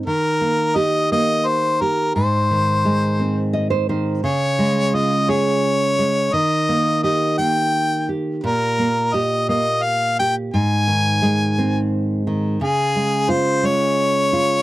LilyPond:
<<
  \new Staff \with { instrumentName = "Harmonica" } { \time 6/8 \key ees \mixolydian \tempo 4. = 58 bes'4 ees''8 ees''8 c''8 bes'8 | c''2 r4 | des''4 ees''8 des''4. | ees''4 ees''8 g''4 r8 |
bes'4 ees''8 ees''8 f''8 g''8 | aes''2 r4 | aes'4 c''8 des''4. | }
  \new Staff \with { instrumentName = "Nylon-string guitar" } { \time 6/8 \key ees \mixolydian << { r2. | r2 ees''16 c''16 c''8 | r2. | r2. |
r2. | r2. | r2. | } \\ { ees8 bes8 g'8 bes4 g'8 | aes,8 ees8 aes8 c'4 ees8 | des8 aes8 f'8 aes'4 aes8 | ees8 bes8 g'8 bes4 g'8 |
bes,8 bes8 g'8 bes4 g'8 | aes,8 ees8 aes8 c'4 ees8 | des8 aes8 f'8 aes4 f'8 | } >> }
>>